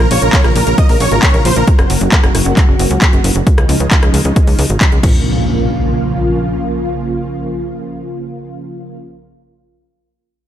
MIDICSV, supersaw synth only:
0, 0, Header, 1, 2, 480
1, 0, Start_track
1, 0, Key_signature, -5, "minor"
1, 0, Tempo, 447761
1, 1796, Time_signature, 4, 2, 24, 8
1, 11230, End_track
2, 0, Start_track
2, 0, Title_t, "Supersaw synth"
2, 0, Program_c, 0, 81
2, 113, Note_on_c, 0, 73, 92
2, 204, Note_off_c, 0, 73, 0
2, 236, Note_on_c, 0, 70, 64
2, 325, Note_off_c, 0, 70, 0
2, 352, Note_on_c, 0, 73, 91
2, 443, Note_off_c, 0, 73, 0
2, 473, Note_on_c, 0, 70, 65
2, 564, Note_off_c, 0, 70, 0
2, 593, Note_on_c, 0, 70, 64
2, 684, Note_off_c, 0, 70, 0
2, 713, Note_on_c, 0, 70, 63
2, 804, Note_off_c, 0, 70, 0
2, 837, Note_on_c, 0, 75, 89
2, 926, Note_off_c, 0, 75, 0
2, 955, Note_on_c, 0, 70, 61
2, 1045, Note_off_c, 0, 70, 0
2, 1076, Note_on_c, 0, 73, 91
2, 1165, Note_off_c, 0, 73, 0
2, 1193, Note_on_c, 0, 70, 62
2, 1283, Note_off_c, 0, 70, 0
2, 1312, Note_on_c, 0, 73, 89
2, 1403, Note_off_c, 0, 73, 0
2, 1432, Note_on_c, 0, 70, 61
2, 1523, Note_off_c, 0, 70, 0
2, 1553, Note_on_c, 0, 72, 88
2, 1643, Note_off_c, 0, 72, 0
2, 1673, Note_on_c, 0, 70, 65
2, 1764, Note_off_c, 0, 70, 0
2, 11230, End_track
0, 0, End_of_file